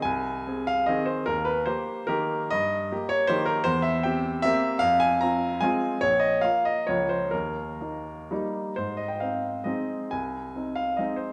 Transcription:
\new Staff \with { instrumentName = "Grand piano" } { \time 3/4 \key aes \major \tempo 4 = 145 << { aes''4. f''8 ees''8 c''8 | bes'8 ces''8 c''4 bes'4 | ees''4. des''8 c''8 bes'8 | c''8 e''8 g''4 e''4 |
f''8 aes''8 bes''4 aes''4 | des''8 ees''8 f''8 ees''8 des''8 c''8 | bes'2 r4 | c''8 ees''16 g''16 f''4 ees''4 |
aes''4. f''8 ees''8 c''8 | } \\ { c,4 <c' aes'>4 <ees c' aes'>4 | ees,4 <bes g'>4 <ees bes g'>4 | g,4 <bes g'>4 <ees bes g'>4 | e,4 <c' g'>4 <bes c' g'>4 |
f,4 <c' f'>4 <aes c' f'>4 | bes,,4 <bes f'>4 <des, f bes f'>4 | ees,4 <bes ees'>4 <g bes ees'>4 | aes,4 <c' ees'>4 <aes c' ees'>4 |
c,4 <c' ees'>4 <aes c' ees'>4 | } >> }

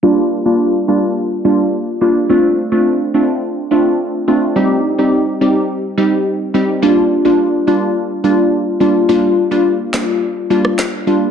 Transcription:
<<
  \new Staff \with { instrumentName = "Synth pluck" } { \time 4/4 \key g \minor \tempo 4 = 106 <g bes d' f'>16 r8 <g bes d' f'>16 r8 <g bes d' f'>16 r8. <g bes d' f'>16 r8. <g bes d' f'>16 r16 | <a c' d' f'>16 r8 <a c' d' f'>16 r8 <a c' d' f'>16 r8. <a c' d' f'>16 r8. <a c' d' f'>16 r16 | <g c' ees' g'>16 r8 <g c' ees' g'>16 r8 <g c' ees' g'>16 r8. <g c' ees' g'>16 r8. <g c' ees' g'>16 r16 | <g bes d' f'>16 r8 <g bes d' f'>16 r8 <g bes d' f'>16 r8. <g bes d' f'>16 r8. <g bes d' f'>16 r16 |
<g bes d' f'>16 r8 <g bes d' f'>16 r8 <g bes d' f'>16 r8. <g bes d' f'>16 r8. <g bes d' f'>16 r16 | }
  \new DrumStaff \with { instrumentName = "Drums" } \drummode { \time 4/4 r4 r4 r4 r4 | r4 r4 r4 r4 | r4 r4 r4 r4 | r4 r4 r4 r4 |
r4 r8 <hc sn>8 r8. ss16 <hc sn>4 | }
>>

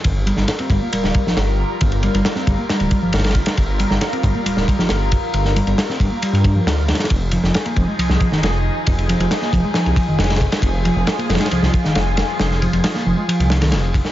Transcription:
<<
  \new Staff \with { instrumentName = "Analog synth pad" } { \time 4/4 \key g \phrygian \tempo 4 = 136 << { <g bes'>1~ | <g bes'>1~ | <g bes'>1~ | <g bes'>1 |
<f aes'>1~ | <f aes'>1~ | <f aes'>1~ | <f aes'>1 | } \\ { f'1~ | f'1~ | f'1~ | f'1 |
ees'1~ | ees'1 | f'1~ | f'1 | } >> }
  \new Staff \with { instrumentName = "Picked electric bass" } { \clef bass \time 4/4 \key g \phrygian r8 g16 g16 r16 c'16 g16 bes16 g8. f16 r4 | r8 g16 g16 r16 c'16 g16 bes16 g8. f16 r4 | r8 g16 g16 r16 c'16 g16 bes16 g8. f16 r4 | r8 g16 g16 r16 c'16 g16 bes16 g8. f16 r4 |
r8 f16 f16 r16 bes16 f16 aes16 f8. ees16 r4 | r8 f16 f16 r16 bes16 f16 aes16 f8. ees16 r4 | r8 f16 f16 r16 bes16 f16 aes16 f8. ees16 r4 | r8 f16 f16 r16 bes16 f16 aes16 f8. ees16 r4 | }
  \new Staff \with { instrumentName = "Detuned saw bass" } { \clef bass \time 4/4 \key g \phrygian g,,8 r16 g,,16 r8 g,,16 r16 d,,16 d,,16 r16 g,,16 g,,8 r8 | g,,8 r16 g,,16 r8 g,,16 r8 d,,16 r16 g,,16 g,,8 r8 | g,,8 r16 g,,16 r8 g,,16 r16 d,,16 d,,16 r16 g,,16 g,,8 r8 | g,,8 r16 g,,16 r8 g,,16 r8 g,8 r16 d,8 r8 |
f,,8 r16 f,,16 r8 f,,16 r16 c,16 c,16 r16 f,,16 f,,8 r8 | f,,8 r16 f,,16 r8 f,,16 r8 c,16 r16 f,,16 f,,8 r8 | f,,8 r16 f,,16 r8 f,,16 r16 c,16 c,16 r16 f,,16 f,,8 r8 | f,,8 r16 f,,16 r8 f,,16 r8 c,8. f,,8 r8 | }
  \new DrumStaff \with { instrumentName = "Drums" } \drummode { \time 4/4 <bd cymr>8 cymr16 sn16 <cymr sn>16 cymr16 <bd cymr>8 cymr16 sn16 <bd cymr>16 sn16 <cymr sn>4 | <bd cymr>16 cymr16 cymr16 cymr16 <cymr sn>16 sn16 <bd cymr>8 <cymr sn>16 cymr16 <bd cymr>8 <cymr sn>32 <cymr sn>32 <cymr sn>32 <cymr sn>32 <bd cymr>16 <cymr sn>16 | <bd cymr>8 cymr16 sn16 <cymr sn>16 cymr16 <bd cymr>8 cymr16 sn16 <bd cymr>16 sn16 <cymr sn>8 <bd cymr>8 | cymr16 sn16 cymr16 cymr16 <cymr sn>16 sn16 <bd cymr>8 cymr16 cymr16 <bd cymr>8 <cymr sn>8 <cymr sn>32 <cymr sn>32 <cymr sn>32 <cymr sn>32 |
<bd cymr>8 cymr16 sn16 <cymr sn>16 cymr16 <bd cymr>8 cymr16 sn16 <bd cymr>16 sn16 <cymr sn>4 | <bd cymr>16 cymr16 cymr16 cymr16 <cymr sn>16 sn16 <bd cymr>8 <cymr sn>16 cymr16 <bd cymr>8 <cymr sn>32 <cymr sn>32 <cymr sn>32 <cymr sn>32 <bd cymr>16 <cymr sn>16 | <bd cymr>8 cymr8 <cymr sn>16 cymr16 <cymr sn>32 <cymr sn>32 <cymr sn>32 <cymr sn>32 cymr16 sn16 <bd cymr>16 sn16 <cymr sn>8 <cymr sn>8 | <cymr sn>16 sn16 cymr16 cymr16 <cymr sn>16 sn8. cymr16 cymr16 <cymr sn>16 <cymr sn>16 <cymr sn>8 <bd cymr>16 sn16 | }
>>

